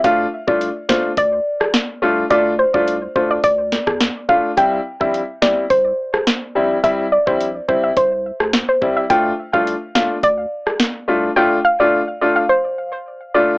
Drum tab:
HH |x---x---x---x---|x---x---x---x---|x---x---x---x---|x---x---x---x---|
SD |------o----ro---|----------oro---|------o----ro---|-----------ro---|
BD |o--o--o-o-------|o--o--o-o--o--o-|o--o--o-o-------|o--o--o-o-----o-|

HH |x---x---x---x---|----------------|
SD |------o----ro---|----------------|
BD |o--o--o-o-------|----------------|